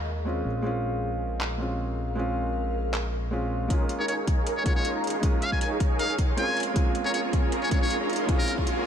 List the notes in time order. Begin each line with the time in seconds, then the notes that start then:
Already playing: D#2 G#3 A#3 C#4 F4 G#4 A#4 D#5
0.25 G#3 C4 C#4 F4
0.45 A#1 A#4 F5
0.62 G#3 C4 C#4
0.66 F4
1.41 clap
1.58 G#3 C4 C#4 F4
2.15 G#3 C4 C#4 F4
2.94 clap
3.31 G#3 C4 C#4 F4
3.68 G#3 A#3 C#4 D#4 G#4 A#4 C#5 D#5 G#5, kick, closed hi-hat, riser
3.72 F4
3.89 closed hi-hat
3.99 D#4 G#4 A#4 C#5 A#5
4.08 D#4 G#4 A#4 C#5 G#5, closed hi-hat
4.27 D#4 G#4 A#4 C#5 G#5, kick, closed hi-hat
4.47 D#4 G#4 A#4 C#5 A#5, closed hi-hat
4.57 D#4 G#4 A#4 C#5 G#5
4.64 G#3 A#3 C#4 D#4 G#4 A#4 C#5 F#5, kick, closed hi-hat
4.68 F4
4.76 D#4 G#4 A#4 C#5 C6
4.85 closed hi-hat
4.95 D#4 G#4 A#4 C#5 A#5
5.04 closed hi-hat
5.07 closed hi-hat
5.10 D#4 G#4 A#4 C#5 C6, closed hi-hat
5.21 G#3 A#3 C#4 D#4 G#4 A#4 C#5 G#5, kick, closed hi-hat
5.25 F4
5.42 F5, closed hi-hat
5.52 D#4 G#4 A#4 C#5 G#5 A#5, kick
5.61 D#4 G#4 A#4 C#5 G#5, closed hi-hat
5.80 D#4 G#4 A#4 C#5 G#5, kick, closed hi-hat
5.99 D#4 G#4 A#4 C#5 F5 A#5, closed hi-hat
6.09 D#4 G#4 A#4 C#5 G#5
6.18 F#5, kick, closed hi-hat
6.29 D#4 G#4 A#4 C#5 C6
6.37 G#3 C4 C#4 F4 G#5, closed hi-hat
6.48 F4 G#4 A#4 C#5 A#5
6.57 A#3 F4 C#6, closed hi-hat
6.60 closed hi-hat
6.63 F4 G#4 A#4 C#5 C6, closed hi-hat
6.74 G#3 C4 C#4 F4 G#4 A#4 C#5 G#5, kick, closed hi-hat
6.78 F4
6.95 closed hi-hat
7.05 F4 G#4 A#4 C#5 A#5
7.14 F4 G#4 A#4 C#5 G#5, closed hi-hat
7.33 F4 G#4 A#4 C#5 G#5, kick, closed hi-hat
7.52 F4 G#4 A#4 C#5 A#5, closed hi-hat
7.62 F4 G#4 A#4 C#5 G#5
7.69 G#3 C4 C#4 F4 A#4 C#5 F5, kick, closed hi-hat
7.73 F4
7.81 F4 G#4 A#4 C#5 C6
7.90 closed hi-hat
8.01 F4 G#4 A#4 C#5 A#5
8.10 closed hi-hat
8.13 closed hi-hat
8.16 F4 G#4 A#4 C#5 C6, closed hi-hat
8.27 G#3 C4 C#4 F4 G#4 A#4 C#5 G#5, kick, closed hi-hat
8.31 F4
8.39 A#4
8.48 closed hi-hat
8.58 F4 G#4 A#4 C#5 A#5, kick
8.67 F4 G#4 A#4 C#5 G#5, closed hi-hat